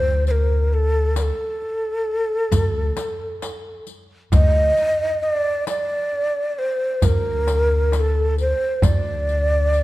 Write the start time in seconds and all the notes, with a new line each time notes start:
Already playing: D2 C5
0.27 C5, riq
0.31 A#4
0.71 A4, darbuka ka
1.16 A#4, riq, darbuka tek
1.23 A4
1.62 darbuka ka
2.52 D2, riq, darbuka dum
2.97 riq, darbuka tek
3.42 riq, darbuka tek
3.87 riq
4.32 D2 D#5, riq, darbuka dum
4.77 riq
5.22 D5, darbuka ka
5.67 D5, riq, darbuka tek
6.13 darbuka ka
6.59 C5
7.02 D2 A#4, riq, darbuka dum
7.47 riq, darbuka tek
7.92 A#4, riq, darbuka tek
8.00 A4
8.38 C5, riq, darbuka ka
8.82 D2 D5, riq, darbuka dum
9.28 riq, darbuka ka
9.73 riq, darbuka ka